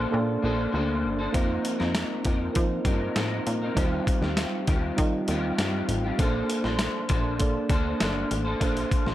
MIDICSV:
0, 0, Header, 1, 5, 480
1, 0, Start_track
1, 0, Key_signature, -2, "major"
1, 0, Tempo, 605449
1, 1065, Time_signature, 4, 2, 24, 8
1, 7251, End_track
2, 0, Start_track
2, 0, Title_t, "Tine electric piano"
2, 0, Program_c, 0, 4
2, 0, Control_c, 0, 64, 127
2, 0, Note_on_c, 0, 58, 78
2, 0, Note_on_c, 0, 61, 55
2, 0, Note_on_c, 0, 62, 74
2, 0, Note_on_c, 0, 69, 70
2, 0, Note_on_c, 0, 72, 89
2, 85, Note_off_c, 0, 58, 0
2, 85, Note_on_c, 0, 58, 75
2, 92, Note_off_c, 0, 62, 0
2, 92, Note_on_c, 0, 62, 68
2, 97, Note_off_c, 0, 69, 0
2, 97, Note_on_c, 0, 69, 70
2, 105, Note_on_c, 0, 74, 81
2, 862, Note_off_c, 0, 58, 0
2, 866, Note_off_c, 0, 62, 0
2, 868, Note_off_c, 0, 69, 0
2, 872, Note_off_c, 0, 74, 0
2, 1051, Note_on_c, 0, 58, 76
2, 1054, Note_on_c, 0, 63, 69
2, 1063, Note_on_c, 0, 65, 72
2, 1070, Note_off_c, 0, 72, 0
2, 1070, Note_on_c, 0, 72, 85
2, 1076, Control_c, 0, 64, 0
2, 1081, Note_off_c, 0, 61, 0
2, 1199, Control_c, 0, 64, 127
2, 1825, Note_off_c, 0, 58, 0
2, 1827, Note_off_c, 0, 63, 0
2, 1831, Note_off_c, 0, 65, 0
2, 1834, Note_off_c, 0, 72, 0
2, 2010, Note_on_c, 0, 70, 74
2, 2018, Note_on_c, 0, 63, 67
2, 2024, Note_on_c, 0, 65, 71
2, 2032, Note_on_c, 0, 72, 87
2, 2785, Note_off_c, 0, 70, 0
2, 2789, Note_off_c, 0, 63, 0
2, 2792, Note_off_c, 0, 65, 0
2, 2796, Note_off_c, 0, 72, 0
2, 2972, Note_on_c, 0, 55, 78
2, 2980, Note_on_c, 0, 63, 72
2, 2986, Note_on_c, 0, 65, 68
2, 2992, Note_on_c, 0, 72, 83
2, 2997, Control_c, 0, 64, 0
2, 3115, Control_c, 0, 64, 127
2, 3746, Note_off_c, 0, 55, 0
2, 3750, Note_off_c, 0, 63, 0
2, 3753, Note_off_c, 0, 65, 0
2, 3756, Note_off_c, 0, 72, 0
2, 3936, Note_on_c, 0, 55, 76
2, 3943, Note_on_c, 0, 63, 71
2, 3951, Note_on_c, 0, 65, 70
2, 3956, Note_on_c, 0, 75, 83
2, 4708, Note_off_c, 0, 55, 0
2, 4711, Note_off_c, 0, 63, 0
2, 4716, Note_off_c, 0, 65, 0
2, 4718, Note_off_c, 0, 75, 0
2, 4897, Note_on_c, 0, 58, 76
2, 4907, Note_on_c, 0, 61, 61
2, 4914, Note_on_c, 0, 69, 71
2, 4918, Control_c, 0, 64, 0
2, 4918, Note_on_c, 0, 72, 82
2, 4956, Note_on_c, 0, 62, 73
2, 4958, Note_off_c, 0, 61, 0
2, 5066, Control_c, 0, 64, 127
2, 5668, Note_off_c, 0, 58, 0
2, 5677, Note_off_c, 0, 69, 0
2, 5679, Note_off_c, 0, 72, 0
2, 5698, Note_off_c, 0, 62, 0
2, 5860, Note_on_c, 0, 58, 77
2, 5863, Note_on_c, 0, 62, 69
2, 5874, Note_on_c, 0, 69, 72
2, 5881, Note_on_c, 0, 74, 84
2, 6630, Note_off_c, 0, 58, 0
2, 6631, Note_off_c, 0, 62, 0
2, 6637, Note_off_c, 0, 69, 0
2, 6640, Note_off_c, 0, 74, 0
2, 6820, Note_on_c, 0, 58, 78
2, 6824, Note_on_c, 0, 62, 69
2, 6834, Note_on_c, 0, 69, 71
2, 6836, Note_on_c, 0, 72, 84
2, 7251, Note_off_c, 0, 58, 0
2, 7251, Note_off_c, 0, 62, 0
2, 7251, Note_off_c, 0, 69, 0
2, 7251, Note_off_c, 0, 72, 0
2, 7251, End_track
3, 0, Start_track
3, 0, Title_t, "Clean electric guitar"
3, 0, Program_c, 1, 27
3, 0, Note_on_c, 1, 58, 58
3, 0, Note_on_c, 1, 62, 61
3, 0, Note_on_c, 1, 69, 62
3, 0, Note_on_c, 1, 72, 71
3, 333, Note_off_c, 1, 58, 0
3, 337, Note_on_c, 1, 58, 62
3, 338, Note_off_c, 1, 62, 0
3, 344, Note_off_c, 1, 69, 0
3, 348, Note_on_c, 1, 62, 67
3, 354, Note_off_c, 1, 72, 0
3, 354, Note_on_c, 1, 69, 71
3, 357, Note_on_c, 1, 72, 69
3, 565, Note_off_c, 1, 58, 0
3, 574, Note_on_c, 1, 58, 64
3, 577, Note_off_c, 1, 62, 0
3, 580, Note_off_c, 1, 69, 0
3, 586, Note_on_c, 1, 62, 58
3, 588, Note_off_c, 1, 72, 0
3, 590, Note_on_c, 1, 69, 57
3, 597, Note_on_c, 1, 72, 67
3, 932, Note_off_c, 1, 72, 0
3, 939, Note_off_c, 1, 58, 0
3, 941, Note_on_c, 1, 72, 57
3, 942, Note_off_c, 1, 69, 0
3, 946, Note_off_c, 1, 62, 0
3, 952, Note_on_c, 1, 69, 48
3, 963, Note_on_c, 1, 62, 50
3, 1059, Note_on_c, 1, 53, 76
3, 1063, Note_off_c, 1, 72, 0
3, 1064, Note_on_c, 1, 60, 81
3, 1068, Note_off_c, 1, 69, 0
3, 1069, Note_off_c, 1, 62, 0
3, 1072, Note_on_c, 1, 63, 79
3, 1073, Note_on_c, 1, 70, 81
3, 1406, Note_off_c, 1, 70, 0
3, 1415, Note_off_c, 1, 63, 0
3, 1416, Note_on_c, 1, 70, 55
3, 1422, Note_off_c, 1, 53, 0
3, 1424, Note_on_c, 1, 63, 46
3, 1425, Note_off_c, 1, 60, 0
3, 1438, Note_on_c, 1, 60, 47
3, 1773, Note_off_c, 1, 60, 0
3, 1777, Note_on_c, 1, 53, 57
3, 1781, Note_off_c, 1, 63, 0
3, 1781, Note_off_c, 1, 70, 0
3, 1782, Note_on_c, 1, 60, 61
3, 1790, Note_on_c, 1, 63, 61
3, 1799, Note_on_c, 1, 70, 60
3, 2258, Note_off_c, 1, 53, 0
3, 2261, Note_on_c, 1, 53, 61
3, 2265, Note_off_c, 1, 60, 0
3, 2268, Note_on_c, 1, 60, 62
3, 2275, Note_off_c, 1, 63, 0
3, 2278, Note_on_c, 1, 63, 60
3, 2281, Note_off_c, 1, 70, 0
3, 2284, Note_on_c, 1, 70, 63
3, 2494, Note_off_c, 1, 53, 0
3, 2504, Note_on_c, 1, 53, 57
3, 2507, Note_off_c, 1, 60, 0
3, 2512, Note_off_c, 1, 63, 0
3, 2515, Note_off_c, 1, 70, 0
3, 2517, Note_on_c, 1, 60, 62
3, 2520, Note_on_c, 1, 63, 66
3, 2530, Note_on_c, 1, 70, 69
3, 2858, Note_off_c, 1, 70, 0
3, 2865, Note_off_c, 1, 53, 0
3, 2867, Note_on_c, 1, 70, 55
3, 2871, Note_off_c, 1, 60, 0
3, 2871, Note_off_c, 1, 63, 0
3, 2881, Note_on_c, 1, 63, 48
3, 2892, Note_on_c, 1, 60, 44
3, 2978, Note_off_c, 1, 60, 0
3, 2980, Note_on_c, 1, 51, 73
3, 2986, Note_off_c, 1, 70, 0
3, 2987, Note_off_c, 1, 63, 0
3, 2987, Note_on_c, 1, 60, 85
3, 2990, Note_on_c, 1, 65, 78
3, 2997, Note_on_c, 1, 67, 88
3, 3333, Note_off_c, 1, 67, 0
3, 3342, Note_on_c, 1, 67, 57
3, 3343, Note_off_c, 1, 51, 0
3, 3345, Note_off_c, 1, 65, 0
3, 3346, Note_off_c, 1, 60, 0
3, 3355, Note_on_c, 1, 65, 51
3, 3364, Note_on_c, 1, 60, 44
3, 3703, Note_on_c, 1, 51, 59
3, 3704, Note_off_c, 1, 67, 0
3, 3705, Note_off_c, 1, 60, 0
3, 3710, Note_off_c, 1, 65, 0
3, 3715, Note_on_c, 1, 60, 64
3, 3718, Note_on_c, 1, 65, 66
3, 3729, Note_on_c, 1, 67, 65
3, 4179, Note_off_c, 1, 51, 0
3, 4189, Note_on_c, 1, 51, 60
3, 4194, Note_off_c, 1, 60, 0
3, 4197, Note_off_c, 1, 67, 0
3, 4198, Note_on_c, 1, 60, 68
3, 4201, Note_off_c, 1, 65, 0
3, 4204, Note_on_c, 1, 65, 65
3, 4208, Note_on_c, 1, 67, 68
3, 4413, Note_off_c, 1, 51, 0
3, 4421, Note_off_c, 1, 60, 0
3, 4422, Note_on_c, 1, 51, 64
3, 4428, Note_off_c, 1, 65, 0
3, 4430, Note_on_c, 1, 60, 60
3, 4434, Note_off_c, 1, 67, 0
3, 4437, Note_on_c, 1, 65, 65
3, 4443, Note_on_c, 1, 67, 66
3, 4780, Note_off_c, 1, 67, 0
3, 4784, Note_off_c, 1, 51, 0
3, 4788, Note_off_c, 1, 60, 0
3, 4790, Note_on_c, 1, 67, 61
3, 4792, Note_off_c, 1, 65, 0
3, 4802, Note_on_c, 1, 65, 52
3, 4811, Note_on_c, 1, 60, 48
3, 4906, Note_off_c, 1, 60, 0
3, 4908, Note_off_c, 1, 65, 0
3, 4908, Note_off_c, 1, 67, 0
3, 4909, Note_on_c, 1, 58, 73
3, 4912, Note_on_c, 1, 62, 82
3, 4920, Note_on_c, 1, 69, 86
3, 4926, Note_on_c, 1, 72, 85
3, 5255, Note_off_c, 1, 72, 0
3, 5264, Note_off_c, 1, 69, 0
3, 5264, Note_on_c, 1, 72, 59
3, 5268, Note_off_c, 1, 58, 0
3, 5269, Note_off_c, 1, 62, 0
3, 5274, Note_on_c, 1, 69, 52
3, 5285, Note_on_c, 1, 62, 44
3, 5615, Note_off_c, 1, 62, 0
3, 5617, Note_on_c, 1, 58, 60
3, 5623, Note_off_c, 1, 69, 0
3, 5624, Note_on_c, 1, 62, 65
3, 5625, Note_off_c, 1, 72, 0
3, 5632, Note_on_c, 1, 69, 61
3, 5637, Note_on_c, 1, 72, 69
3, 6094, Note_off_c, 1, 58, 0
3, 6096, Note_off_c, 1, 62, 0
3, 6097, Note_on_c, 1, 58, 56
3, 6104, Note_off_c, 1, 69, 0
3, 6106, Note_on_c, 1, 62, 61
3, 6114, Note_on_c, 1, 69, 69
3, 6118, Note_off_c, 1, 72, 0
3, 6121, Note_on_c, 1, 72, 68
3, 6333, Note_off_c, 1, 58, 0
3, 6342, Note_on_c, 1, 58, 55
3, 6343, Note_off_c, 1, 62, 0
3, 6350, Note_off_c, 1, 69, 0
3, 6352, Note_on_c, 1, 62, 63
3, 6353, Note_off_c, 1, 72, 0
3, 6358, Note_on_c, 1, 69, 69
3, 6367, Note_on_c, 1, 72, 66
3, 6688, Note_off_c, 1, 72, 0
3, 6698, Note_on_c, 1, 72, 58
3, 6702, Note_off_c, 1, 69, 0
3, 6704, Note_off_c, 1, 58, 0
3, 6709, Note_off_c, 1, 62, 0
3, 6712, Note_on_c, 1, 69, 53
3, 6724, Note_on_c, 1, 62, 50
3, 6812, Note_off_c, 1, 62, 0
3, 6816, Note_off_c, 1, 69, 0
3, 6819, Note_on_c, 1, 58, 74
3, 6821, Note_on_c, 1, 62, 80
3, 6822, Note_off_c, 1, 72, 0
3, 6825, Note_on_c, 1, 69, 89
3, 6831, Note_on_c, 1, 72, 82
3, 7176, Note_off_c, 1, 72, 0
3, 7182, Note_off_c, 1, 58, 0
3, 7184, Note_off_c, 1, 62, 0
3, 7186, Note_off_c, 1, 69, 0
3, 7186, Note_on_c, 1, 72, 54
3, 7199, Note_on_c, 1, 69, 49
3, 7209, Note_on_c, 1, 62, 46
3, 7251, Note_off_c, 1, 62, 0
3, 7251, Note_off_c, 1, 69, 0
3, 7251, Note_off_c, 1, 72, 0
3, 7251, End_track
4, 0, Start_track
4, 0, Title_t, "Analog synth bass"
4, 0, Program_c, 2, 38
4, 107, Note_on_c, 2, 46, 100
4, 298, Note_off_c, 2, 46, 0
4, 343, Note_on_c, 2, 34, 90
4, 536, Note_off_c, 2, 34, 0
4, 585, Note_on_c, 2, 38, 87
4, 828, Note_on_c, 2, 31, 78
4, 840, Note_off_c, 2, 38, 0
4, 1019, Note_off_c, 2, 31, 0
4, 1066, Note_on_c, 2, 41, 97
4, 1257, Note_off_c, 2, 41, 0
4, 1432, Note_on_c, 2, 41, 97
4, 1621, Note_off_c, 2, 41, 0
4, 1787, Note_on_c, 2, 41, 90
4, 1978, Note_off_c, 2, 41, 0
4, 2030, Note_on_c, 2, 53, 100
4, 2220, Note_off_c, 2, 53, 0
4, 2260, Note_on_c, 2, 43, 86
4, 2454, Note_off_c, 2, 43, 0
4, 2506, Note_on_c, 2, 45, 90
4, 2698, Note_off_c, 2, 45, 0
4, 2749, Note_on_c, 2, 46, 91
4, 2940, Note_off_c, 2, 46, 0
4, 2985, Note_on_c, 2, 39, 103
4, 3177, Note_off_c, 2, 39, 0
4, 3339, Note_on_c, 2, 39, 88
4, 3534, Note_off_c, 2, 39, 0
4, 3711, Note_on_c, 2, 39, 94
4, 3901, Note_off_c, 2, 39, 0
4, 3951, Note_on_c, 2, 51, 98
4, 4141, Note_off_c, 2, 51, 0
4, 4188, Note_on_c, 2, 39, 91
4, 4379, Note_off_c, 2, 39, 0
4, 4427, Note_on_c, 2, 43, 82
4, 4619, Note_off_c, 2, 43, 0
4, 4665, Note_on_c, 2, 33, 87
4, 4857, Note_off_c, 2, 33, 0
4, 4909, Note_on_c, 2, 34, 101
4, 5100, Note_off_c, 2, 34, 0
4, 5265, Note_on_c, 2, 34, 90
4, 5457, Note_off_c, 2, 34, 0
4, 5628, Note_on_c, 2, 34, 89
4, 6011, Note_off_c, 2, 34, 0
4, 6103, Note_on_c, 2, 38, 86
4, 6296, Note_off_c, 2, 38, 0
4, 6351, Note_on_c, 2, 31, 89
4, 6541, Note_off_c, 2, 31, 0
4, 6589, Note_on_c, 2, 33, 86
4, 6780, Note_off_c, 2, 33, 0
4, 6828, Note_on_c, 2, 34, 97
4, 7019, Note_off_c, 2, 34, 0
4, 7185, Note_on_c, 2, 34, 89
4, 7251, Note_off_c, 2, 34, 0
4, 7251, End_track
5, 0, Start_track
5, 0, Title_t, "Drums"
5, 1065, Note_on_c, 9, 36, 90
5, 1065, Note_on_c, 9, 42, 80
5, 1144, Note_off_c, 9, 36, 0
5, 1145, Note_off_c, 9, 42, 0
5, 1306, Note_on_c, 9, 42, 69
5, 1385, Note_off_c, 9, 42, 0
5, 1427, Note_on_c, 9, 38, 34
5, 1506, Note_off_c, 9, 38, 0
5, 1543, Note_on_c, 9, 38, 108
5, 1548, Note_on_c, 9, 42, 76
5, 1622, Note_off_c, 9, 38, 0
5, 1627, Note_off_c, 9, 42, 0
5, 1780, Note_on_c, 9, 42, 62
5, 1786, Note_on_c, 9, 36, 82
5, 1860, Note_off_c, 9, 42, 0
5, 1865, Note_off_c, 9, 36, 0
5, 2024, Note_on_c, 9, 42, 77
5, 2029, Note_on_c, 9, 36, 87
5, 2103, Note_off_c, 9, 42, 0
5, 2108, Note_off_c, 9, 36, 0
5, 2259, Note_on_c, 9, 36, 81
5, 2260, Note_on_c, 9, 42, 63
5, 2338, Note_off_c, 9, 36, 0
5, 2339, Note_off_c, 9, 42, 0
5, 2504, Note_on_c, 9, 38, 102
5, 2506, Note_on_c, 9, 42, 68
5, 2583, Note_off_c, 9, 38, 0
5, 2585, Note_off_c, 9, 42, 0
5, 2748, Note_on_c, 9, 42, 60
5, 2827, Note_off_c, 9, 42, 0
5, 2987, Note_on_c, 9, 36, 92
5, 2989, Note_on_c, 9, 42, 78
5, 3066, Note_off_c, 9, 36, 0
5, 3068, Note_off_c, 9, 42, 0
5, 3228, Note_on_c, 9, 36, 77
5, 3233, Note_on_c, 9, 42, 70
5, 3307, Note_off_c, 9, 36, 0
5, 3312, Note_off_c, 9, 42, 0
5, 3350, Note_on_c, 9, 38, 34
5, 3429, Note_off_c, 9, 38, 0
5, 3464, Note_on_c, 9, 38, 104
5, 3469, Note_on_c, 9, 42, 78
5, 3543, Note_off_c, 9, 38, 0
5, 3548, Note_off_c, 9, 42, 0
5, 3706, Note_on_c, 9, 42, 63
5, 3709, Note_on_c, 9, 36, 86
5, 3785, Note_off_c, 9, 42, 0
5, 3788, Note_off_c, 9, 36, 0
5, 3948, Note_on_c, 9, 42, 75
5, 3951, Note_on_c, 9, 36, 81
5, 4028, Note_off_c, 9, 42, 0
5, 4031, Note_off_c, 9, 36, 0
5, 4184, Note_on_c, 9, 42, 62
5, 4264, Note_off_c, 9, 42, 0
5, 4427, Note_on_c, 9, 38, 103
5, 4429, Note_on_c, 9, 42, 72
5, 4507, Note_off_c, 9, 38, 0
5, 4508, Note_off_c, 9, 42, 0
5, 4668, Note_on_c, 9, 42, 59
5, 4747, Note_off_c, 9, 42, 0
5, 4907, Note_on_c, 9, 36, 89
5, 4907, Note_on_c, 9, 42, 78
5, 4986, Note_off_c, 9, 36, 0
5, 4986, Note_off_c, 9, 42, 0
5, 5150, Note_on_c, 9, 42, 68
5, 5229, Note_off_c, 9, 42, 0
5, 5265, Note_on_c, 9, 38, 35
5, 5344, Note_off_c, 9, 38, 0
5, 5381, Note_on_c, 9, 38, 106
5, 5386, Note_on_c, 9, 42, 85
5, 5460, Note_off_c, 9, 38, 0
5, 5465, Note_off_c, 9, 42, 0
5, 5620, Note_on_c, 9, 42, 62
5, 5627, Note_on_c, 9, 36, 80
5, 5700, Note_off_c, 9, 42, 0
5, 5707, Note_off_c, 9, 36, 0
5, 5863, Note_on_c, 9, 42, 73
5, 5870, Note_on_c, 9, 36, 82
5, 5942, Note_off_c, 9, 42, 0
5, 5949, Note_off_c, 9, 36, 0
5, 6101, Note_on_c, 9, 36, 88
5, 6101, Note_on_c, 9, 42, 61
5, 6180, Note_off_c, 9, 36, 0
5, 6180, Note_off_c, 9, 42, 0
5, 6346, Note_on_c, 9, 38, 109
5, 6348, Note_on_c, 9, 42, 74
5, 6425, Note_off_c, 9, 38, 0
5, 6427, Note_off_c, 9, 42, 0
5, 6588, Note_on_c, 9, 42, 59
5, 6668, Note_off_c, 9, 42, 0
5, 6826, Note_on_c, 9, 36, 93
5, 6828, Note_on_c, 9, 42, 77
5, 6906, Note_off_c, 9, 36, 0
5, 6907, Note_off_c, 9, 42, 0
5, 6951, Note_on_c, 9, 42, 46
5, 7030, Note_off_c, 9, 42, 0
5, 7068, Note_on_c, 9, 36, 81
5, 7070, Note_on_c, 9, 42, 66
5, 7147, Note_off_c, 9, 36, 0
5, 7149, Note_off_c, 9, 42, 0
5, 7187, Note_on_c, 9, 38, 35
5, 7251, Note_off_c, 9, 38, 0
5, 7251, End_track
0, 0, End_of_file